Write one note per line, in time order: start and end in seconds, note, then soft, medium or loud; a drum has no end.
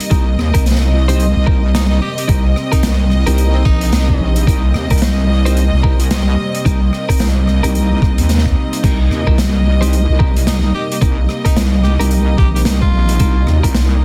0.00 14.05 C3 medium
0.00 14.05 G3 medium
0.00 14.05 A#3 medium
0.00 0.10 D#4 loud
0.00 14.05 D#5 medium
0.00 closed hi-hat medium
0.10 0.37 C2 medium
0.10 8.83 C4 medium
0.10 0.25 C4 medium
0.10 0.25 D#4 medium
0.10 0.25 G4 medium
0.10 0.25 A#4 medium
0.10 kick loud
0.10 closed hi-hat medium
0.38 0.52 D#2 loud
0.38 cross-stick medium
0.54 1.34 C2 medium
0.54 0.64 C4 medium
0.54 0.64 D#4 medium
0.54 0.64 G4 medium
0.54 0.64 A#4 loud
0.54 kick medium
0.54 closed hi-hat medium
0.66 snare soft
0.66 closed hi-hat medium
0.71 snare medium
0.75 snare medium
1.08 1.26 C4 medium
1.08 1.26 D#4 medium
1.08 1.26 G4 medium
1.08 1.26 C5 loud
1.08 closed hi-hat medium
1.20 closed hi-hat medium
1.36 1.45 C2 medium
1.46 1.61 C4 medium
1.46 1.61 D#4 medium
1.46 1.61 G4 medium
1.46 1.61 A#4 medium
1.46 kick loud
1.74 1.85 D#4 medium
1.74 snare loud
1.74 closed hi-hat medium
1.90 1.98 D#4 medium
2.01 2.12 G4 medium
2.18 2.25 G4 medium
2.18 closed hi-hat medium
2.28 2.55 C2 loud
2.28 2.43 C4 medium
2.28 2.43 D#4 medium
2.28 2.43 G4 medium
2.28 2.43 A#4 medium
2.28 kick loud
2.28 closed hi-hat medium
2.56 cross-stick soft
2.72 2.90 C4 medium
2.72 2.83 D#4 medium
2.72 2.90 D#4 medium
2.72 2.90 G4 medium
2.72 2.90 A#4 loud
2.72 kick medium
2.72 closed hi-hat medium
2.83 3.25 C2 loud
2.83 snare loud
2.83 closed hi-hat medium
3.10 cross-stick soft
3.26 3.64 C2 loud
3.26 4.44 C4 medium
3.26 4.44 D#4 medium
3.26 4.44 G4 medium
3.26 4.44 A#4 loud
3.26 closed hi-hat medium
3.38 closed hi-hat medium
3.54 3.63 C4 medium
3.65 3.91 A#1 loud
3.65 4.43 D#4 loud
3.65 kick loud
3.65 cross-stick medium
3.81 closed hi-hat medium
3.92 4.18 C2 loud
3.92 snare loud
3.92 closed hi-hat medium
4.09 kick medium
4.20 4.46 A#1 loud
4.36 closed hi-hat medium
4.47 4.73 C2 loud
4.47 4.62 C4 medium
4.47 4.62 D#4 medium
4.47 4.62 G4 medium
4.47 4.62 A#4 medium
4.47 kick loud
4.47 closed hi-hat medium
4.74 4.88 D#2 loud
4.74 cross-stick medium
4.90 5.70 C2 medium
4.90 5.00 C4 medium
4.90 5.00 D#4 medium
4.90 5.00 G4 medium
4.90 5.00 A#4 loud
4.90 kick medium
4.90 closed hi-hat soft
4.92 closed hi-hat medium
4.98 closed hi-hat medium
5.02 snare loud
5.02 closed hi-hat medium
5.45 5.63 C4 medium
5.45 5.63 D#4 medium
5.45 5.63 G4 medium
5.45 5.63 C5 loud
5.45 closed hi-hat medium
5.57 closed hi-hat medium
5.73 5.82 C2 medium
5.83 6.36 C2 loud
5.83 5.98 C4 medium
5.83 5.98 D#4 medium
5.83 5.98 G4 medium
5.83 5.98 A#4 medium
5.83 kick loud
6.00 closed hi-hat medium
6.11 snare loud
6.11 closed hi-hat medium
6.55 closed hi-hat medium
6.65 6.91 C2 loud
6.65 6.80 C4 loud
6.65 6.80 D#4 medium
6.65 6.80 G4 medium
6.65 6.80 A#4 medium
6.65 kick loud
6.65 closed hi-hat medium
6.93 cross-stick soft
7.09 7.27 C4 medium
7.09 7.27 D#4 medium
7.09 7.27 G4 medium
7.09 7.26 A#4 loud
7.09 kick medium
7.09 closed hi-hat medium
7.11 closed hi-hat medium
7.17 closed hi-hat soft
7.20 7.61 C2 loud
7.20 snare loud
7.20 closed hi-hat medium
7.20 closed hi-hat soft
7.30 closed hi-hat soft
7.47 cross-stick soft
7.63 8.00 C2 loud
7.63 8.81 C4 medium
7.63 8.81 D#4 medium
7.63 8.81 G4 medium
7.63 8.81 A#4 loud
7.63 closed hi-hat medium
7.75 closed hi-hat medium
8.02 8.16 C2 loud
8.02 kick loud
8.02 cross-stick medium
8.18 8.55 D#2 loud
8.18 closed hi-hat medium
8.29 snare soft
8.29 closed hi-hat medium
8.34 snare medium
8.38 snare medium
8.46 kick medium
8.73 closed hi-hat medium
8.83 9.09 C2 medium
8.83 8.98 C4 medium
8.83 14.05 D#4 medium
8.83 8.98 D#4 medium
8.83 8.98 G4 medium
8.83 8.98 A#4 medium
8.83 kick loud
8.83 closed hi-hat medium
8.83 crash medium
9.11 9.25 D#2 loud
9.11 cross-stick soft
9.27 10.06 C2 medium
9.27 9.37 C4 medium
9.27 9.37 D#4 medium
9.27 9.37 G4 medium
9.27 9.37 A#4 loud
9.27 kick medium
9.38 snare loud
9.38 closed hi-hat medium
9.81 9.99 C4 medium
9.81 9.99 D#4 medium
9.81 9.99 G4 medium
9.81 9.99 C5 loud
9.81 closed hi-hat medium
9.93 closed hi-hat medium
10.09 10.18 C2 medium
10.19 10.73 C2 loud
10.19 10.34 C4 medium
10.19 10.34 D#4 medium
10.19 10.34 G4 medium
10.19 10.34 A#4 medium
10.19 kick loud
10.36 closed hi-hat medium
10.47 10.58 D#4 medium
10.47 snare loud
10.47 closed hi-hat medium
10.63 10.70 D#4 medium
10.74 10.85 G4 medium
10.91 10.98 G4 medium
10.91 closed hi-hat medium
11.01 11.27 C2 loud
11.01 11.16 C4 loud
11.01 11.16 D#4 medium
11.01 11.16 G4 medium
11.01 11.16 A#4 medium
11.01 kick loud
11.01 closed hi-hat medium
11.29 cross-stick medium
11.45 11.63 C4 medium
11.45 11.56 D#4 medium
11.45 11.63 D#4 medium
11.45 11.63 G4 medium
11.45 11.63 A#4 loud
11.45 kick medium
11.45 closed hi-hat medium
11.56 11.97 C2 loud
11.56 snare loud
11.56 closed hi-hat medium
11.83 11.94 G4 medium
11.83 cross-stick soft
11.99 12.37 C2 loud
11.99 13.17 C4 medium
11.99 13.17 D#4 medium
11.99 12.07 G4 medium
11.99 13.17 G4 medium
11.99 13.17 A#4 loud
11.99 closed hi-hat medium
12.11 closed hi-hat medium
12.37 12.64 A#1 loud
12.37 12.48 G4 medium
12.37 kick loud
12.37 cross-stick medium
12.54 12.61 G4 medium
12.54 closed hi-hat medium
12.65 12.91 C2 loud
12.65 snare loud
12.65 closed hi-hat medium
12.82 13.57 F4 loud
12.82 kick medium
12.93 13.18 A#1 loud
13.09 closed hi-hat medium
13.19 13.46 C2 loud
13.19 13.34 C4 medium
13.19 13.34 D#4 medium
13.19 13.34 G4 medium
13.19 13.34 A#4 medium
13.19 kick loud
13.19 closed hi-hat medium
13.47 13.61 D#2 loud
13.47 cross-stick medium
13.63 14.05 C2 medium
13.63 13.73 C4 medium
13.63 13.73 D#4 medium
13.63 13.73 G4 medium
13.63 13.73 A#4 loud
13.63 kick medium
13.63 closed hi-hat medium
13.74 snare loud
13.74 closed hi-hat medium